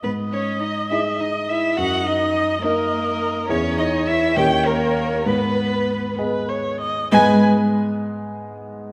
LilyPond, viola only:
\new Staff \with { instrumentName = "Viola" } { \time 6/8 \key gis \minor \tempo 4. = 68 dis''2. | dis''4. dis''4. | cis''4. cis''4. | b'4. b'8 cis''8 dis''8 |
b'8 r2 r8 | }